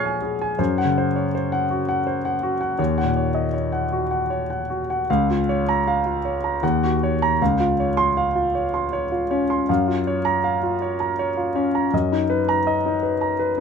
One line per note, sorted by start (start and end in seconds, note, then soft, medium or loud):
0.00 0.55 A#2 soft
0.00 0.61 F3 soft
0.00 0.22 G#4 soft
0.00 0.61 C#5 soft
0.00 0.61 D#5 soft
0.00 0.05 G#5 soft
0.00 0.55 C#6 soft
0.00 0.57 F6 soft
0.00 0.58 G#6 soft
0.00 0.60 C7 soft
0.05 0.34 G#5 soft
0.22 0.52 G#4 soft
0.41 0.59 G#5 soft
0.59 2.75 F#2 soft
0.59 0.88 C5 soft
0.78 1.07 F#5 medium
0.85 1.23 C#3 soft
0.98 1.26 C5 soft
1.16 1.33 C#5 soft
1.35 1.63 C5 soft
1.52 1.81 F#5 soft
1.70 1.99 F#4 soft
1.89 2.17 F#5 soft
2.07 2.35 C5 soft
2.25 2.54 F#5 soft
2.43 2.72 F#4 soft
2.61 2.79 F#5 soft
2.79 5.04 D#2 soft
2.79 3.09 C#5 soft
2.98 3.28 F#5 soft
3.04 3.44 A#2 soft
3.16 3.46 C#5 soft
3.35 3.53 D#5 soft
3.54 3.84 C#5 soft
3.72 4.03 F#5 soft
3.92 4.22 F#4 soft
4.11 4.41 F#5 soft
4.30 4.61 C#5 soft
4.50 4.81 F#5 soft
4.70 5.01 F#4 soft
4.90 5.09 F#5 soft
5.10 6.59 C#2 medium
5.10 5.41 F5 medium
5.30 5.61 F4 soft
5.49 5.79 C#5 medium
5.69 5.99 A#5 medium
5.87 6.17 F5 medium
6.06 6.36 F4 soft
6.25 6.55 C#5 soft
6.44 6.63 A#5 soft
6.63 7.38 D#2 medium
6.63 6.94 F#5 medium
6.84 7.14 F#4 soft
7.03 7.33 C#5 soft
7.22 7.41 A#5 medium
7.42 9.65 C#2 soft
7.42 7.71 F5 soft
7.60 7.89 F4 soft
7.80 8.09 C#5 soft
7.97 8.27 C6 medium
8.17 8.46 F5 medium
8.35 8.65 F4 soft
8.55 8.85 C#5 soft
8.74 9.04 C6 soft
8.93 9.23 C#5 soft
9.12 9.42 F4 soft
9.31 9.61 C#4 soft
9.31 9.61 C#5 soft
9.50 9.69 C6 soft
9.69 11.89 F#2 soft
9.69 9.99 F5 soft
9.88 10.18 F4 soft
10.07 10.37 C#5 soft
10.25 10.55 A#5 medium
10.44 10.74 F5 soft
10.63 10.93 F4 soft
10.82 11.12 C#5 soft
11.00 11.30 A#5 soft
11.19 11.48 C#5 soft
11.37 11.67 F4 soft
11.55 11.85 C#4 soft
11.55 11.85 C#5 soft
11.75 11.93 A#5 soft
11.93 13.60 F#2 soft
11.93 12.23 D#5 soft
12.12 12.41 D#4 soft
12.30 12.59 B4 soft
12.49 12.77 A#5 medium
12.67 12.95 D#5 soft
12.86 13.14 D#4 soft
13.03 13.32 B4 soft
13.21 13.50 A#5 soft
13.39 13.60 B4 soft